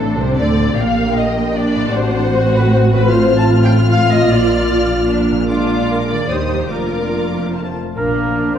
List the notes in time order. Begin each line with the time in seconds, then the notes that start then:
Already playing: A1 A2 A3 C4 D4 F#4 A4
0.00 D4
0.17 C2 C3 C4 C5
0.37 D2 D3 C4 D4 D5
0.59 A#2
0.63 A#3
0.68 D4
0.72 G4
0.76 A#1 A#2 A#3 G4 F5 G5
1.16 D#5
1.55 D4 D5
1.76 A2
1.81 C4
1.85 F#4
1.89 C5 F#5
1.94 A1 A2 C4 F#4 C5
2.34 F#4
2.53 B4
2.72 C5
2.92 A2 B4
2.98 C4
3.02 F4
3.07 F4 C5 F6
3.12 F4
3.37 A5
3.64 G5
3.90 F5
4.11 A#2 D#5
4.16 A#3
4.21 F4
4.25 F5
4.30 A#1 A#2 A#3 D5
5.10 D4
5.31 A#2
5.36 A#3
5.40 G#4
5.45 F4 D5
5.50 G#3 D4 D6
5.91 A#4
6.09 D#3 D5
6.16 A#3
6.21 G4
6.25 C5 D#5
6.30 D#2 G3 D#4 G4 D#6
6.54 F3
6.59 A#3
6.63 F4
6.67 A#4 D5 D6
6.71 F1 F2 A#3 D4 F4
7.38 F3
7.42 A3
7.47 F4
7.51 C5 A5
7.57 A3 C4
7.96 A#1 A#2 A#3 D4 A#4
8.16 F3
8.35 D4 F4
8.54 C2 C4 D#4 A#4 C5